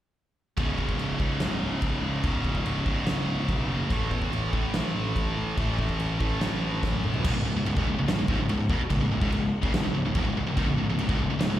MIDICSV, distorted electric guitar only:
0, 0, Header, 1, 3, 480
1, 0, Start_track
1, 0, Key_signature, 4, "minor"
1, 0, Tempo, 416089
1, 660, Time_signature, 4, 2, 24, 8
1, 13377, End_track
2, 0, Start_track
2, 0, Title_t, "Distorted electric guitar"
2, 0, Program_c, 0, 30
2, 660, Note_on_c, 0, 37, 81
2, 683, Note_on_c, 0, 44, 86
2, 702, Note_on_c, 0, 49, 94
2, 1373, Note_off_c, 0, 49, 0
2, 1378, Note_off_c, 0, 44, 0
2, 1378, Note_on_c, 0, 49, 76
2, 1395, Note_on_c, 0, 44, 75
2, 1412, Note_off_c, 0, 37, 0
2, 1417, Note_on_c, 0, 37, 60
2, 2554, Note_off_c, 0, 37, 0
2, 2567, Note_off_c, 0, 49, 0
2, 2568, Note_on_c, 0, 37, 89
2, 2576, Note_off_c, 0, 44, 0
2, 2592, Note_on_c, 0, 44, 85
2, 2613, Note_on_c, 0, 49, 93
2, 3282, Note_off_c, 0, 37, 0
2, 3282, Note_off_c, 0, 49, 0
2, 3295, Note_off_c, 0, 44, 0
2, 3296, Note_on_c, 0, 49, 79
2, 3314, Note_on_c, 0, 44, 84
2, 3341, Note_on_c, 0, 37, 73
2, 4481, Note_off_c, 0, 37, 0
2, 4486, Note_on_c, 0, 45, 84
2, 4488, Note_off_c, 0, 49, 0
2, 4497, Note_off_c, 0, 44, 0
2, 4516, Note_on_c, 0, 52, 91
2, 4531, Note_on_c, 0, 57, 101
2, 5211, Note_off_c, 0, 57, 0
2, 5216, Note_on_c, 0, 57, 76
2, 5236, Note_off_c, 0, 52, 0
2, 5241, Note_on_c, 0, 52, 81
2, 5247, Note_off_c, 0, 45, 0
2, 5252, Note_on_c, 0, 45, 66
2, 6410, Note_off_c, 0, 45, 0
2, 6410, Note_off_c, 0, 57, 0
2, 6424, Note_on_c, 0, 45, 78
2, 6446, Note_off_c, 0, 52, 0
2, 6450, Note_on_c, 0, 52, 84
2, 6470, Note_on_c, 0, 57, 96
2, 7125, Note_off_c, 0, 57, 0
2, 7134, Note_off_c, 0, 45, 0
2, 7138, Note_on_c, 0, 57, 76
2, 7147, Note_off_c, 0, 52, 0
2, 7163, Note_on_c, 0, 52, 69
2, 7184, Note_on_c, 0, 45, 69
2, 8332, Note_off_c, 0, 57, 0
2, 8344, Note_off_c, 0, 52, 0
2, 8351, Note_off_c, 0, 45, 0
2, 8356, Note_on_c, 0, 37, 97
2, 8371, Note_on_c, 0, 44, 106
2, 8463, Note_off_c, 0, 37, 0
2, 8468, Note_off_c, 0, 44, 0
2, 8476, Note_on_c, 0, 37, 66
2, 8482, Note_on_c, 0, 44, 64
2, 8585, Note_off_c, 0, 37, 0
2, 8594, Note_off_c, 0, 44, 0
2, 8599, Note_on_c, 0, 37, 63
2, 8607, Note_on_c, 0, 44, 65
2, 8715, Note_off_c, 0, 44, 0
2, 8716, Note_off_c, 0, 37, 0
2, 8729, Note_on_c, 0, 44, 69
2, 8730, Note_on_c, 0, 37, 66
2, 8826, Note_off_c, 0, 37, 0
2, 8840, Note_on_c, 0, 37, 64
2, 8841, Note_off_c, 0, 44, 0
2, 8853, Note_on_c, 0, 44, 70
2, 8956, Note_off_c, 0, 37, 0
2, 8963, Note_off_c, 0, 44, 0
2, 8971, Note_on_c, 0, 40, 83
2, 8979, Note_on_c, 0, 47, 84
2, 9074, Note_off_c, 0, 40, 0
2, 9079, Note_off_c, 0, 47, 0
2, 9093, Note_on_c, 0, 37, 66
2, 9097, Note_on_c, 0, 44, 78
2, 9192, Note_off_c, 0, 37, 0
2, 9195, Note_off_c, 0, 44, 0
2, 9205, Note_on_c, 0, 37, 70
2, 9209, Note_on_c, 0, 44, 73
2, 9303, Note_off_c, 0, 37, 0
2, 9311, Note_off_c, 0, 44, 0
2, 9317, Note_on_c, 0, 37, 69
2, 9325, Note_on_c, 0, 44, 70
2, 9426, Note_off_c, 0, 37, 0
2, 9428, Note_off_c, 0, 44, 0
2, 9440, Note_on_c, 0, 37, 68
2, 9441, Note_on_c, 0, 44, 69
2, 9548, Note_off_c, 0, 37, 0
2, 9552, Note_off_c, 0, 44, 0
2, 9562, Note_on_c, 0, 37, 92
2, 9566, Note_on_c, 0, 44, 101
2, 9665, Note_off_c, 0, 37, 0
2, 9671, Note_off_c, 0, 44, 0
2, 9679, Note_on_c, 0, 37, 56
2, 9687, Note_on_c, 0, 44, 66
2, 9783, Note_off_c, 0, 37, 0
2, 9789, Note_off_c, 0, 44, 0
2, 9797, Note_on_c, 0, 37, 65
2, 9803, Note_on_c, 0, 44, 77
2, 9986, Note_off_c, 0, 37, 0
2, 9989, Note_off_c, 0, 44, 0
2, 10037, Note_on_c, 0, 40, 92
2, 10049, Note_on_c, 0, 47, 91
2, 10146, Note_off_c, 0, 40, 0
2, 10152, Note_off_c, 0, 47, 0
2, 10266, Note_on_c, 0, 37, 71
2, 10270, Note_on_c, 0, 44, 74
2, 10375, Note_off_c, 0, 37, 0
2, 10381, Note_off_c, 0, 44, 0
2, 10389, Note_on_c, 0, 37, 73
2, 10395, Note_on_c, 0, 44, 77
2, 10500, Note_off_c, 0, 37, 0
2, 10512, Note_off_c, 0, 44, 0
2, 10514, Note_on_c, 0, 37, 62
2, 10525, Note_on_c, 0, 44, 73
2, 10616, Note_off_c, 0, 37, 0
2, 10626, Note_off_c, 0, 44, 0
2, 10630, Note_on_c, 0, 37, 95
2, 10640, Note_on_c, 0, 44, 106
2, 10726, Note_off_c, 0, 37, 0
2, 10732, Note_off_c, 0, 44, 0
2, 10740, Note_on_c, 0, 37, 72
2, 10746, Note_on_c, 0, 44, 74
2, 10936, Note_off_c, 0, 37, 0
2, 10939, Note_off_c, 0, 44, 0
2, 11096, Note_on_c, 0, 42, 84
2, 11109, Note_on_c, 0, 49, 102
2, 11214, Note_off_c, 0, 42, 0
2, 11220, Note_on_c, 0, 37, 61
2, 11221, Note_off_c, 0, 49, 0
2, 11232, Note_on_c, 0, 44, 67
2, 11327, Note_off_c, 0, 37, 0
2, 11336, Note_off_c, 0, 44, 0
2, 11341, Note_on_c, 0, 37, 71
2, 11350, Note_on_c, 0, 44, 78
2, 11454, Note_off_c, 0, 37, 0
2, 11456, Note_off_c, 0, 44, 0
2, 11467, Note_on_c, 0, 37, 64
2, 11470, Note_on_c, 0, 44, 73
2, 11587, Note_off_c, 0, 37, 0
2, 11588, Note_off_c, 0, 44, 0
2, 11598, Note_on_c, 0, 37, 52
2, 11601, Note_on_c, 0, 44, 63
2, 11706, Note_off_c, 0, 37, 0
2, 11710, Note_on_c, 0, 40, 88
2, 11713, Note_off_c, 0, 44, 0
2, 11719, Note_on_c, 0, 47, 100
2, 11821, Note_off_c, 0, 40, 0
2, 11825, Note_off_c, 0, 47, 0
2, 11833, Note_on_c, 0, 37, 72
2, 11843, Note_on_c, 0, 44, 76
2, 11949, Note_off_c, 0, 37, 0
2, 11954, Note_off_c, 0, 44, 0
2, 11966, Note_on_c, 0, 37, 69
2, 11968, Note_on_c, 0, 44, 74
2, 12065, Note_off_c, 0, 37, 0
2, 12072, Note_off_c, 0, 44, 0
2, 12079, Note_on_c, 0, 37, 70
2, 12086, Note_on_c, 0, 44, 67
2, 12186, Note_off_c, 0, 37, 0
2, 12195, Note_off_c, 0, 44, 0
2, 12200, Note_on_c, 0, 37, 97
2, 12211, Note_on_c, 0, 44, 113
2, 12305, Note_off_c, 0, 37, 0
2, 12311, Note_off_c, 0, 44, 0
2, 12325, Note_on_c, 0, 37, 61
2, 12326, Note_on_c, 0, 44, 65
2, 12426, Note_off_c, 0, 37, 0
2, 12430, Note_off_c, 0, 44, 0
2, 12439, Note_on_c, 0, 37, 63
2, 12444, Note_on_c, 0, 44, 78
2, 12552, Note_off_c, 0, 37, 0
2, 12554, Note_off_c, 0, 44, 0
2, 12576, Note_on_c, 0, 37, 69
2, 12583, Note_on_c, 0, 44, 77
2, 12679, Note_off_c, 0, 37, 0
2, 12683, Note_off_c, 0, 44, 0
2, 12695, Note_on_c, 0, 37, 69
2, 12701, Note_on_c, 0, 44, 77
2, 12793, Note_off_c, 0, 37, 0
2, 12797, Note_on_c, 0, 40, 85
2, 12802, Note_off_c, 0, 44, 0
2, 12811, Note_on_c, 0, 47, 88
2, 12903, Note_off_c, 0, 40, 0
2, 12910, Note_off_c, 0, 47, 0
2, 12923, Note_on_c, 0, 37, 65
2, 12931, Note_on_c, 0, 44, 69
2, 13025, Note_off_c, 0, 37, 0
2, 13027, Note_off_c, 0, 44, 0
2, 13039, Note_on_c, 0, 37, 73
2, 13041, Note_on_c, 0, 44, 68
2, 13127, Note_off_c, 0, 37, 0
2, 13132, Note_off_c, 0, 44, 0
2, 13141, Note_on_c, 0, 37, 66
2, 13146, Note_on_c, 0, 44, 68
2, 13250, Note_off_c, 0, 37, 0
2, 13260, Note_off_c, 0, 44, 0
2, 13264, Note_on_c, 0, 37, 70
2, 13274, Note_on_c, 0, 44, 78
2, 13375, Note_off_c, 0, 37, 0
2, 13377, Note_off_c, 0, 44, 0
2, 13377, End_track
3, 0, Start_track
3, 0, Title_t, "Muted distorted electric guitar strokes"
3, 10154, Note_on_c, 9, 29, 62
3, 10270, Note_off_c, 9, 29, 0
3, 13377, End_track
0, 0, End_of_file